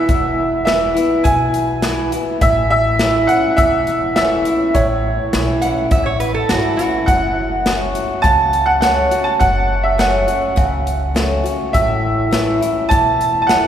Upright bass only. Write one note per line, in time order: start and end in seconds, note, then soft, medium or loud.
0.09 0.92 E1 medium
1.25 2.09 B1 medium
2.42 3.25 A1 medium
3.58 4.42 E1 medium
4.75 5.17 A1 medium
5.33 5.83 B1 medium
5.91 6.41 A1 medium
6.50 7.00 G#1 medium
7.08 7.91 F#1 medium
8.24 9.08 C#2 medium
9.40 10.24 F#1 medium
10.57 11.41 C#2 medium
11.74 12.57 A1 medium
12.91 13.67 E1 medium